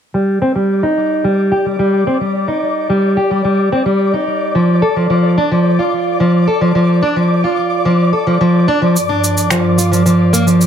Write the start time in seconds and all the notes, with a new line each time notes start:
0.14 G3 D5 D6
0.42 C4
0.56 G3
0.83 D#4
1.24 G3
1.52 G4
1.66 G3
1.79 G3
2.07 C4
2.21 G3
2.48 D#4
2.90 G3
3.17 G4
3.31 G3
3.45 G3
3.72 C4
3.86 G3
4.13 D#4
4.55 F3
4.82 A4
4.96 F3
5.10 F3
5.38 D4
5.52 F3
5.79 F4
6.20 F3
6.48 A4
6.61 F3
6.75 F3
7.03 D4
7.16 F3
7.44 F4
7.85 F3
8.13 A4
8.27 F3
8.41 F3
8.68 D4
8.82 F3
8.96 G2 F3 A#4, cabasa
9.09 D4
9.24 cabasa
9.37 cabasa
9.50 F3, finger snap, cabasa
9.78 F4, cabasa
9.92 F3, cabasa
10.06 F3, cabasa
10.33 A#3, cabasa
10.47 F3, cabasa
10.61 cabasa